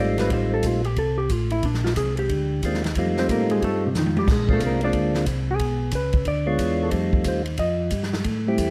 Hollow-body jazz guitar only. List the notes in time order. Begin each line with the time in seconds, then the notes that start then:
0.00 D5
0.20 B4
0.34 C5
0.54 A4
0.66 F4
0.85 G4
0.99 A4
1.18 G4
1.31 F4
1.52 E4
1.65 D4
1.84 F4
1.97 G#4
2.19 G4
3.19 C4 C5
3.31 A#3 A#4
3.51 G#3 G#4
3.64 A3 A4
3.86 C3 C4
3.98 D#3 D#4
4.19 G3 G4
4.32 G#3 G#4
4.53 A3 A4
4.66 A#3 A#4
4.84 D4 D5
5.51 G#4
5.95 B4
6.28 D5
6.83 A4
7.28 C5
7.59 D#5